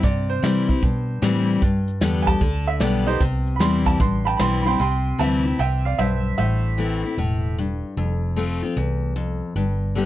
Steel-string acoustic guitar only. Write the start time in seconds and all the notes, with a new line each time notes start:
0.03 C3
0.42 E3 G3 C4 E4
0.68 C4 E4
0.83 G2
1.22 E3 G3 C4 E4
1.62 G2
2.01 D3 G3 B3 G4
2.27 B3 G4
2.41 D3
2.80 D3 G3 B3 G4
3.07 B3 G4
3.20 C3
3.59 E3 G3 C4 E4
4.00 G2
4.39 E3 G3 C4 E4
4.65 C4 E4
4.80 C3
5.18 E3 G3 C4 E4
5.45 C4 E4
5.59 C3
5.99 G2
6.38 A2
6.78 E3 A3 C4 E4
7.04 C4 E4
7.18 A2
7.58 G2
7.97 F2
8.36 F3 A3 C4 F4
8.62 C4 F4
8.77 E2
9.16 F2
9.56 G2
9.95 D3 G3 B3 G4